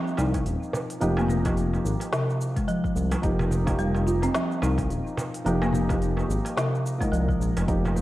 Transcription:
Already playing: marimba F3, felt piano F3 A#3 D#4 G4
0.08 shaker
0.17 analog synth bass C2, marimba D#4, darbuka ka, darbuka tek, shaker
0.34 kick, open hi-hat, darbuka ka, shaker
0.46 analog synth bass D#1, open hi-hat, shaker
0.63 shaker
0.73 darbuka tek, darbuka dum, shaker
0.90 open hi-hat, shaker
1.00 analog synth bass F1, felt piano F3 A#3 D#4 G4, marimba F3, open hi-hat, shaker
1.17 marimba A#3, darbuka tek, shaker
1.28 marimba A#3, darbuka dum, shaker
1.43 felt piano F3 A#3 D#4, marimba F3, kick, open hi-hat, darbuka ka, darbuka tek, shaker
1.47 felt piano G4
1.57 open hi-hat, shaker
1.73 darbuka ka, shaker
1.85 analog synth bass G#1, shaker
2.00 open hi-hat, darbuka ka, shaker
2.12 marimba C3, snare, open hi-hat, shaker
2.30 shaker
2.41 shaker
2.56 marimba G#3, kick, open hi-hat, darbuka tek, shaker
2.68 marimba F3, open hi-hat, shaker
2.84 marimba F3, kick, shaker
2.96 analog synth bass C2, shaker
3.12 open hi-hat, darbuka tek, shaker
3.22 analog synth bass F1, felt piano F3 A#3 D#4 G4, marimba F3, kick, open hi-hat, shaker
3.39 darbuka tek, darbuka dum, shaker
3.51 darbuka dum, shaker
3.65 felt piano F3 A#3 D#4 G4, kick, open hi-hat, darbuka ka, darbuka tek, shaker
3.79 marimba G3, open hi-hat, shaker
3.95 darbuka ka, shaker
4.07 marimba F4, shaker
4.22 marimba C4, open hi-hat, darbuka ka, shaker
4.35 marimba F3, snare, open hi-hat, shaker
4.52 shaker
4.62 analog synth bass C2, marimba D#4, darbuka ka, darbuka tek, shaker
4.78 kick, open hi-hat, darbuka ka, shaker
4.90 analog synth bass D#1, open hi-hat, shaker
5.07 shaker
5.17 darbuka tek, darbuka dum, shaker
5.34 open hi-hat, shaker
5.44 analog synth bass F1, felt piano F3 A#3 D#4 G4, marimba F3, open hi-hat, shaker
5.62 marimba A#3, darbuka tek, shaker
5.73 marimba A#3, darbuka dum, shaker
5.88 felt piano F3 A#3 D#4, marimba F3, kick, open hi-hat, darbuka ka, darbuka tek, shaker
5.92 felt piano G4
6.02 open hi-hat, shaker
6.17 darbuka ka, darbuka tek, shaker
6.29 analog synth bass G#1, shaker
6.45 open hi-hat, darbuka ka, shaker
6.57 marimba C3, snare, open hi-hat, shaker
6.75 shaker
6.86 shaker
6.98 felt piano F3 A#3 D#4, marimba G#3, kick, open hi-hat, darbuka tek
7.02 felt piano A#4, shaker
7.12 analog synth bass C2, marimba F3, open hi-hat, shaker
7.29 marimba F3, kick, shaker
7.40 analog synth bass A#1, shaker
7.57 analog synth bass F1, open hi-hat, darbuka tek, shaker
7.67 felt piano F3 A#3 D#4 G4, marimba F3, kick, open hi-hat, shaker
7.85 darbuka tek, darbuka dum, shaker
7.96 darbuka dum, shaker

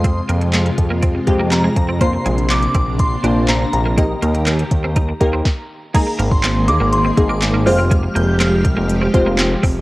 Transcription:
Already playing: analog synth bass F2, string machine C3 G#3 F4, synth stab G#3 C4 F4 C5, synth bell C6
0.04 clean electric guitar C4, kick, closed hi-hat
0.29 analog synth bass F2, clean electric guitar A#3, closed hi-hat
0.41 muted clean electric guitar stroke, closed hi-hat
0.53 clean electric guitar G#3, snare, clap, closed hi-hat
0.66 muted clean electric guitar stroke, closed hi-hat
0.78 analog synth bass F2, kick, closed hi-hat
0.90 clean electric guitar A#3
1.02 clean electric guitar C4, kick, closed hi-hat
1.15 muted clean electric guitar stroke
1.27 analog synth bass F2, synth stab G#3 C4 F4 G4, kick, closed hi-hat
1.40 clean electric guitar A#3
1.52 synth bell A#5, snare, clap, closed hi-hat
1.64 clean electric guitar G#3
1.76 analog synth bass F2, muted clean electric guitar stroke, kick, closed hi-hat
1.89 clean electric guitar C4
2.01 synth stab A#3 D4 F4 C5, string machine A#3 D4, clean electric guitar A#3, synth bell C6, kick, closed hi-hat
2.13 muted clean electric guitar stroke
2.26 analog synth bass A#1, clean electric guitar G#3, closed hi-hat
2.38 closed hi-hat
2.50 synth bell D6, snare, clap, closed hi-hat
2.63 closed hi-hat
2.75 analog synth bass A#1, clean electric guitar C4, kick, closed hi-hat
2.99 synth bell C6, kick, closed hi-hat
3.24 analog synth bass A#1, synth stab A#3 D4 F4 C5, clean electric guitar D4, closed hi-hat
3.48 clean electric guitar C4, synth bell A#5, snare, clap, closed hi-hat
3.61 muted clean electric guitar stroke
3.73 analog synth bass A#1, synth bell A#5, closed hi-hat
3.86 clean electric guitar A#3
3.97 string machine D#3 G4, synth stab A#3 D#4 G4 D#5, clean electric guitar C4, kick, closed hi-hat
4.22 analog synth bass D#2, clean electric guitar A#3, closed hi-hat
4.35 muted clean electric guitar stroke, closed hi-hat
4.47 clean electric guitar A#3, snare, clap, closed hi-hat
4.59 muted clean electric guitar stroke, closed hi-hat
4.71 analog synth bass D#2, kick, closed hi-hat
4.84 clean electric guitar C4
4.96 clean electric guitar D#4, kick, closed hi-hat
5.09 muted clean electric guitar stroke
5.20 analog synth bass D#2, synth stab A#3 D#4 G4 A#4, kick, closed hi-hat
5.33 clean electric guitar C4
5.45 kick, snare
5.94 string machine D#3 A#3 G#4, clean electric guitar G#3, synth stab A#3 D#4 G#4, synth bell A#5, kick, closed hi-hat, crash
6.07 muted clean electric guitar stroke
6.19 analog synth bass G#1, clean electric guitar A#3, closed hi-hat
6.31 synth bell C6, kick
6.43 clean electric guitar C4, snare, clap, closed hi-hat
6.68 analog synth bass D#2, synth bell D6, muted clean electric guitar stroke, closed hi-hat
6.80 analog synth bass G#1, clean electric guitar A#3
6.93 synth bell C6, closed hi-hat
7.05 clean electric guitar C4
7.17 analog synth bass G#1, synth stab A#3 D#4 G#4, muted clean electric guitar stroke, kick, closed hi-hat
7.29 clean electric guitar A#3, synth bell D6
7.42 snare, clap, closed hi-hat
7.54 clean electric guitar A#3
7.66 analog synth bass F1, string machine F3 G#3 G4, synth stab G#3 C4 F4 G4 C5, synth bell F6, muted clean electric guitar stroke, open hi-hat
7.79 clean electric guitar C4
7.91 clean electric guitar G#3, kick, closed hi-hat
8.03 muted clean electric guitar stroke
8.15 analog synth bass F1, clean electric guitar A#3, synth bell G6, closed hi-hat
8.40 clean electric guitar C4, synth bell F6, snare, clap, closed hi-hat
8.65 analog synth bass C2, muted clean electric guitar stroke, kick, closed hi-hat
8.77 analog synth bass F1, clean electric guitar A#3
8.89 closed hi-hat
9.02 clean electric guitar C4
9.14 analog synth bass F1, synth stab G#3 C4 F4 G4 C5, muted clean electric guitar stroke, kick, closed hi-hat
9.26 clean electric guitar A#3
9.38 snare, clap, closed hi-hat
9.63 analog synth bass F1, clean electric guitar C4, kick, open hi-hat

